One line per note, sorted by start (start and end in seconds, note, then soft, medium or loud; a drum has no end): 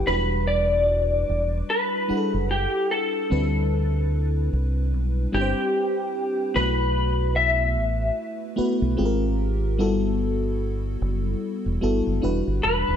0.06 1.24 E1 loud
0.06 0.13 F#3 medium
0.06 1.54 D4 medium
0.06 1.55 E4 medium
0.06 1.55 F#4 medium
0.06 0.47 B4 medium
0.06 1.55 B4 medium
0.12 1.57 G3 medium
0.47 1.69 D5 loud
1.29 1.61 E1 medium
1.70 2.46 B4 medium
2.08 3.20 G3 medium
2.08 3.20 D4 medium
2.08 3.20 E4 medium
2.08 2.17 G#4 medium
2.08 3.20 F#5 medium
2.08 muted fingered electric bass stroke soft
2.17 3.24 A4 medium
2.34 2.66 F#1 medium
2.51 2.91 G4 medium
2.91 4.48 A4 medium
3.30 4.48 D2 loud
3.30 4.78 G3 medium
3.30 4.79 C4 medium
3.30 4.79 D4 medium
3.30 4.79 E4 medium
3.30 4.80 B4 medium
4.53 4.94 C2 medium
4.94 5.26 B1 medium
5.32 5.53 G1 medium
5.32 6.44 G3 medium
5.32 6.44 C4 medium
5.32 6.44 D4 medium
5.32 6.45 E4 medium
5.32 6.58 G4 medium
5.32 5.41 B4 medium
5.41 6.48 C5 medium
6.54 7.77 B1 loud
6.54 8.03 A3 medium
6.54 8.03 B3 medium
6.54 8.03 E4 medium
6.54 8.03 F#4 medium
6.54 7.36 B4 medium
6.54 8.04 B4 medium
7.36 12.18 E5 medium
7.77 8.10 A1 medium
8.56 8.97 A3 medium
8.56 8.97 B3 medium
8.56 8.97 E4 medium
8.56 8.98 F#4 medium
8.56 8.98 B4 medium
8.56 muted fingered electric bass stroke soft
8.82 8.95 B1 medium
8.97 9.80 G#1 medium
8.97 9.71 G#3 medium
8.97 9.72 C4 medium
8.97 9.72 F4 medium
8.97 9.72 G4 medium
8.97 9.06 G#4 medium
9.06 9.76 A#4 medium
9.78 10.97 G1 medium
9.78 11.27 G3 medium
9.78 11.27 B3 medium
9.78 11.27 E4 medium
9.78 11.28 F#4 medium
9.78 11.28 A4 medium
11.02 11.34 F#1 medium
11.66 11.79 E1 medium
11.81 12.01 G1 medium
11.81 12.20 G3 medium
11.81 12.22 B3 medium
11.81 12.22 E4 medium
11.81 12.22 F#4 medium
11.81 12.23 A4 medium
12.07 12.19 F#1 medium
12.22 12.42 E1 medium
12.22 12.96 G3 medium
12.22 12.96 D4 medium
12.22 12.96 E4 medium
12.22 12.97 F#4 medium
12.22 12.97 B4 medium
12.47 12.60 G1 medium
12.63 12.83 E1 medium
12.63 12.97 B4 medium
12.88 12.97 D#1 medium